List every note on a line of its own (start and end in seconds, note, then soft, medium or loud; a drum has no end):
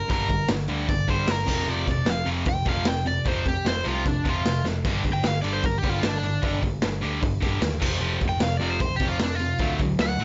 0.09 0.42 G1 medium
0.09 0.28 G2 medium
0.09 0.28 D3 medium
0.09 0.28 G3 medium
0.09 0.49 A#4 loud
0.09 kick loud
0.09 open hi-hat medium
0.29 0.47 G2 medium
0.29 0.47 D3 medium
0.29 kick medium
0.29 open hi-hat medium
0.49 0.66 G1 loud
0.49 0.67 G2 medium
0.49 0.67 D3 medium
0.49 snare loud
0.49 open hi-hat medium
0.68 0.85 D2 medium
0.68 0.87 G2 medium
0.68 0.87 D3 medium
0.68 0.88 G3 loud
0.68 open hi-hat medium
0.88 1.05 G1 medium
0.88 1.06 G2 medium
0.88 1.06 D3 medium
0.88 1.08 D5 medium
0.88 kick loud
0.88 open hi-hat medium
1.08 1.24 G1 medium
1.08 1.27 G2 medium
1.08 1.27 D3 medium
1.08 1.27 G3 loud
1.08 1.28 C5 medium
1.08 kick medium
1.08 open hi-hat medium
1.28 1.44 G1 medium
1.28 1.46 G2 medium
1.28 1.46 D3 medium
1.28 1.68 A#4 medium
1.28 snare loud
1.28 open hi-hat medium
1.46 1.64 F1 medium
1.46 1.66 F2 medium
1.46 1.66 C3 medium
1.46 1.66 F3 loud
1.46 kick loud
1.46 crash loud
1.67 1.84 F1 medium
1.67 1.85 F2 medium
1.67 1.85 C3 medium
1.67 1.87 F3 loud
1.67 1.88 D5 medium
1.86 2.04 F1 medium
1.86 2.04 F2 medium
1.86 2.05 C3 medium
1.86 kick medium
1.86 open hi-hat medium
1.91 2.10 D5 medium
2.06 2.23 F1 medium
2.06 2.24 F2 medium
2.06 2.25 C3 medium
2.06 2.28 F5 medium
2.06 snare loud
2.06 open hi-hat medium
2.25 2.43 F1 medium
2.25 2.44 F2 medium
2.25 2.45 C3 loud
2.25 2.45 F3 loud
2.25 open hi-hat medium
2.46 2.63 F1 medium
2.46 2.64 F2 medium
2.46 2.64 C3 medium
2.46 2.67 G5 loud
2.46 kick loud
2.46 open hi-hat medium
2.65 2.82 F1 medium
2.65 2.84 F2 medium
2.65 2.85 C3 medium
2.65 2.85 F3 loud
2.65 2.87 F5 medium
2.65 kick loud
2.65 open hi-hat medium
2.85 3.17 F1 medium
2.85 3.03 F2 medium
2.85 3.04 C3 medium
2.85 3.06 G5 medium
2.85 snare loud
2.85 open hi-hat medium
3.06 3.24 F2 medium
3.06 3.24 C3 medium
3.06 3.28 D5 medium
3.06 open hi-hat medium
3.25 3.58 F1 loud
3.25 3.44 F2 medium
3.25 3.44 C3 medium
3.25 3.45 F3 loud
3.25 3.46 C5 medium
3.25 kick loud
3.25 open hi-hat medium
3.45 3.63 F2 medium
3.45 3.64 C3 medium
3.45 3.66 G4 medium
3.45 kick medium
3.45 open hi-hat medium
3.65 3.81 F1 medium
3.65 3.83 F2 medium
3.65 3.83 C3 medium
3.65 3.86 C5 medium
3.65 snare loud
3.65 open hi-hat medium
3.84 4.02 C2 medium
3.84 4.03 F2 medium
3.84 4.03 C3 medium
3.84 4.04 F3 loud
3.84 4.08 F4 medium
3.84 open hi-hat medium
4.05 4.22 F1 loud
4.05 4.23 F2 medium
4.05 4.23 C3 medium
4.05 4.29 D4 medium
4.05 kick loud
4.05 open hi-hat medium
4.24 4.42 F1 medium
4.24 4.43 F2 medium
4.24 4.44 C3 loud
4.24 4.44 F3 medium
4.24 kick medium
4.24 open hi-hat medium
4.29 4.65 F4 loud
4.44 4.61 F1 medium
4.44 4.62 F2 medium
4.44 4.63 C3 medium
4.44 snare loud
4.44 open hi-hat medium
4.64 4.80 F1 medium
4.64 4.82 F2 medium
4.64 4.83 C3 medium
4.64 snare medium
4.85 5.01 G1 medium
4.85 5.03 G2 medium
4.85 5.03 D3 medium
4.85 5.04 G3 medium
4.85 kick loud
4.85 crash loud
5.04 5.21 G1 medium
5.04 5.22 G2 medium
5.04 5.23 D3 medium
5.04 kick medium
5.04 open hi-hat medium
5.13 5.27 G5 medium
5.23 5.40 G1 medium
5.23 5.41 G2 medium
5.23 5.42 D3 medium
5.23 5.38 F5 medium
5.23 snare loud
5.23 open hi-hat medium
5.42 5.60 G1 loud
5.42 5.62 G2 medium
5.42 5.62 D3 loud
5.42 5.63 G3 medium
5.42 5.52 D5 medium
5.42 open hi-hat medium
5.53 5.66 C5 medium
5.63 5.80 G1 medium
5.63 5.82 G2 medium
5.63 5.82 D3 medium
5.63 5.77 A#4 medium
5.63 kick loud
5.63 open hi-hat medium
5.78 5.90 G4 medium
5.83 6.00 G1 medium
5.83 6.02 G2 medium
5.83 6.02 D3 loud
5.83 6.02 G3 loud
5.83 kick medium
5.83 open hi-hat medium
5.90 6.03 F4 medium
6.03 6.36 G1 medium
6.03 6.21 G2 medium
6.03 6.21 D3 medium
6.03 6.17 D4 medium
6.03 snare loud
6.03 open hi-hat medium
6.19 6.56 D4 loud
6.23 6.41 G2 medium
6.23 6.41 D3 medium
6.23 open hi-hat medium
6.42 6.75 G1 medium
6.42 6.61 G2 medium
6.42 6.61 D3 medium
6.42 6.62 G3 medium
6.42 kick loud
6.42 open hi-hat medium
6.63 6.80 G2 medium
6.63 6.81 D3 medium
6.63 kick medium
6.63 open hi-hat soft
6.82 6.99 G1 medium
6.82 7.00 G2 medium
6.82 7.00 D3 medium
6.82 snare loud
6.82 open hi-hat medium
7.01 7.19 D2 medium
7.01 7.21 G2 medium
7.01 7.21 D3 medium
7.01 7.21 G3 loud
7.01 open hi-hat medium
7.22 7.39 G1 loud
7.22 7.39 G2 medium
7.22 7.40 D3 medium
7.22 kick loud
7.22 open hi-hat medium
7.41 7.59 G1 medium
7.41 7.59 G2 medium
7.41 7.60 D3 loud
7.41 7.61 G3 loud
7.41 kick loud
7.41 open hi-hat medium
7.61 7.78 D#2 medium
7.61 7.79 G2 medium
7.61 7.79 D3 medium
7.61 snare loud
7.61 open hi-hat medium
7.80 7.98 F1 medium
7.80 8.00 F2 loud
7.80 8.00 C3 medium
7.80 8.00 F3 medium
7.80 kick loud
7.80 crash loud
8.01 8.17 F1 medium
8.01 8.20 F2 loud
8.01 8.20 C3 medium
8.01 8.20 F3 loud
8.21 8.37 F1 medium
8.21 8.39 F2 medium
8.21 8.39 C3 medium
8.21 kick medium
8.21 open hi-hat medium
8.29 8.43 G5 loud
8.40 8.57 F1 medium
8.40 8.59 F2 medium
8.40 8.59 C3 medium
8.40 8.57 F5 medium
8.40 snare loud
8.40 open hi-hat medium
8.57 8.77 F1 medium
8.57 8.79 F2 medium
8.57 8.79 C3 medium
8.57 8.80 F3 loud
8.57 8.70 D5 medium
8.61 open hi-hat medium
8.70 8.80 C5 medium
8.80 8.97 F1 medium
8.80 8.99 F2 medium
8.80 8.99 C3 medium
8.80 8.94 C5 medium
8.80 kick loud
8.80 open hi-hat medium
8.96 9.16 F1 medium
8.96 9.19 F2 loud
8.96 9.08 G4 medium
8.96 kick medium
8.96 open hi-hat medium
9.01 9.19 C3 loud
9.01 9.20 F3 loud
9.08 9.21 F4 medium
9.20 9.52 F1 medium
9.20 9.38 F2 medium
9.20 9.38 C3 medium
9.20 9.35 D4 medium
9.20 snare loud
9.20 open hi-hat medium
9.35 9.73 F4 medium
9.39 9.58 F2 medium
9.39 9.58 C3 medium
9.39 open hi-hat medium
9.58 9.92 D2 medium
9.58 9.79 D3 medium
9.58 9.79 F#3 medium
9.58 9.79 A3 medium
9.58 kick loud
9.58 open hi-hat medium
9.79 9.98 D3 medium
9.79 9.98 F#3 medium
9.79 kick medium
9.79 open hi-hat medium
9.99 10.15 D2 medium
9.99 10.18 D3 medium
9.99 10.18 F#3 medium
9.99 10.24 F#5 medium
9.99 snare loud
9.99 open hi-hat medium
10.18 10.24 A2 medium
10.18 10.24 D3 loud
10.18 10.24 F#3 medium
10.18 10.24 A3 loud
10.18 open hi-hat medium